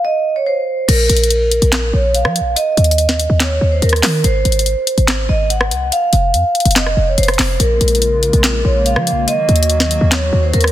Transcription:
0.05 D#5
0.36 C#5
0.46 C5
0.88 A#1 A#4, closed hi-hat, crash
1.09 A#1, closed hi-hat
1.17 closed hi-hat
1.24 closed hi-hat
1.30 closed hi-hat
1.52 closed hi-hat
1.62 A#1, closed hi-hat
1.72 snare, clap, closed hi-hat
1.93 A#1 C#5
2.14 F5, closed hi-hat
2.25 F3, cross-stick
2.36 closed hi-hat
2.41 A#1
2.56 D#5, closed hi-hat
2.77 D#2, closed hi-hat
2.84 closed hi-hat
2.91 closed hi-hat
2.98 closed hi-hat
3.09 snare
3.20 closed hi-hat
3.30 D#2
3.40 C#5, snare, clap, closed hi-hat
3.61 D#2
3.72 C5
3.82 D#2 A#4, closed hi-hat
3.89 cross-stick, closed hi-hat
3.96 closed hi-hat
4.03 D#3, snare, clap, open hi-hat
4.24 G#1 C5, closed hi-hat
4.45 G#1, closed hi-hat
4.52 closed hi-hat
4.59 closed hi-hat
4.66 closed hi-hat
4.87 closed hi-hat
4.98 G#1, closed hi-hat
5.08 snare, clap, closed hi-hat
5.29 G#1 D#5
5.50 F#5, closed hi-hat
5.61 cross-stick
5.71 C2, closed hi-hat
5.92 F5, closed hi-hat
6.13 F1, closed hi-hat
6.34 F2, closed hi-hat
6.55 closed hi-hat
6.60 closed hi-hat
6.65 F1, closed hi-hat
6.71 closed hi-hat
6.76 D#5, snare, clap, closed hi-hat
6.86 cross-stick
6.97 F1
7.07 C#5
7.18 F1 C5, closed hi-hat
7.23 closed hi-hat
7.28 cross-stick, closed hi-hat
7.34 closed hi-hat
7.39 F1, snare, clap, open hi-hat
7.60 A#1 C#3 G#3 A#3 F4 A#4, closed hi-hat
7.81 A#1, closed hi-hat
7.88 closed hi-hat
7.95 closed hi-hat
8.02 closed hi-hat
8.23 closed hi-hat
8.33 A#1, closed hi-hat
8.44 snare, clap, closed hi-hat
8.65 A#1 C#5
8.86 F5, closed hi-hat
8.96 F3, cross-stick
9.07 closed hi-hat
9.12 A#1
9.28 D#3 F#3 F#4 D#5, closed hi-hat
9.49 D#2, closed hi-hat
9.56 closed hi-hat
9.63 closed hi-hat
9.70 closed hi-hat
9.80 snare
9.91 closed hi-hat
10.01 D#2
10.12 C#5, snare, clap, closed hi-hat
10.33 D#2
10.43 C5
10.54 D#2 A#4, closed hi-hat
10.61 cross-stick, closed hi-hat
10.68 closed hi-hat

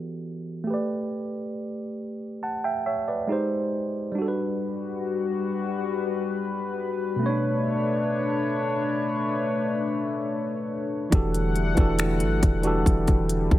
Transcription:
Already playing: E3 B3 F#4 G4 A4 D5
0.64 A3 G4
0.70 B4 D5
2.43 F#5 A5
2.64 E5 G5
2.86 C#5 E5
3.08 B4 D5
3.27 G#3 D#4 G4
3.32 C5
4.12 G3 D4
4.16 G3 F#4 B4
4.22 A4
4.28 B4
7.16 B2 A3
7.21 A3 C#4 D4 C#5
7.26 D4 C#5
11.10 E1 D3 E3 G3 A3 D4 F#4 G4 F#5, kick, closed hi-hat
11.15 A4
11.34 closed hi-hat
11.56 closed hi-hat
11.75 E1 E3 D4 F#4 G4, kick, closed hi-hat
11.80 A4
11.99 finger snap, closed hi-hat
12.20 G1, closed hi-hat
12.43 E1, kick, closed hi-hat
12.62 E3 D4 F#4 G4, closed hi-hat
12.67 A4
12.86 E1, kick, closed hi-hat
13.07 kick, closed hi-hat
13.29 closed hi-hat
13.51 E1, kick

